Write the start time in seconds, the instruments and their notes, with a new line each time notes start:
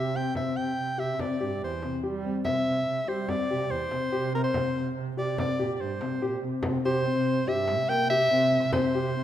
Already playing: double bass C3, soprano saxophone E5
0.14 grand piano C4, soprano saxophone G5
0.35 double bass C3, grand piano C4, soprano saxophone E5, frame drum
0.57 double bass C3, soprano saxophone G5
0.78 double bass C3
0.98 double bass C3, grand piano G4, soprano saxophone E5, frame drum
1.19 grand piano C4, soprano saxophone D5, frame drum
1.40 double bass G2, grand piano G4
1.61 double bass E2, soprano saxophone C5, frame drum
1.82 double bass C3, grand piano C4, frame drum
2.03 double bass G3, grand piano G4, frame drum
2.25 grand piano C4
2.45 double bass C3, grand piano C4, soprano saxophone E5, frame drum
2.67 double bass C3
2.87 double bass C3
3.08 double bass G3, grand piano G4, soprano saxophone C5, frame drum
3.28 grand piano C4, soprano saxophone D5, frame drum
3.50 double bass C3, grand piano G4
3.70 double bass E2, soprano saxophone C5, frame drum
3.91 double bass C3, grand piano C4, frame drum
4.12 double bass C3, grand piano G4, frame drum
4.34 grand piano C4, soprano saxophone A#4
4.44 soprano saxophone C5
4.54 double bass C3, grand piano C4, frame drum
4.76 double bass C3
4.96 double bass C3
5.17 double bass C3, grand piano G4, soprano saxophone D5
5.38 grand piano C4, soprano saxophone D5, frame drum
5.59 double bass A#2, grand piano G4
5.74 soprano saxophone D5
5.80 double bass G2, soprano saxophone C5, frame drum
6.01 double bass C3, grand piano C4, frame drum
6.22 double bass A#2, grand piano G4
6.43 double bass C3, grand piano C4
6.63 double bass C3, grand piano C4, frame drum
6.85 double bass C3, grand piano G4, soprano saxophone C5
7.06 grand piano C4
7.17 double bass C3
7.48 double bass G2, grand piano G4, soprano saxophone E5
7.68 frame drum
7.78 double bass C3
7.89 grand piano A#3, soprano saxophone G5
8.00 double bass C3
8.10 grand piano G4, soprano saxophone E5
8.30 double bass C3, grand piano C4
8.51 frame drum
8.62 double bass C3
8.72 grand piano C4, soprano saxophone C5, frame drum
8.93 double bass C3, grand piano G4
9.15 grand piano C4